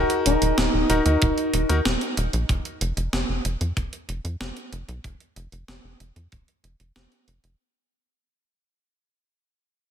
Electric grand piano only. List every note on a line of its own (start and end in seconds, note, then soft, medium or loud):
0.00 0.86 D#4 medium
0.00 0.86 F#4 medium
0.00 0.86 A#4 medium
0.90 1.02 D#4 medium
0.90 1.02 F#4 medium
0.90 1.02 A#4 medium
1.06 1.66 D#4 medium
1.06 1.66 F#4 medium
1.06 1.66 A#4 medium
1.69 1.78 D#4 medium
1.69 1.78 F#4 medium
1.69 1.78 A#4 loud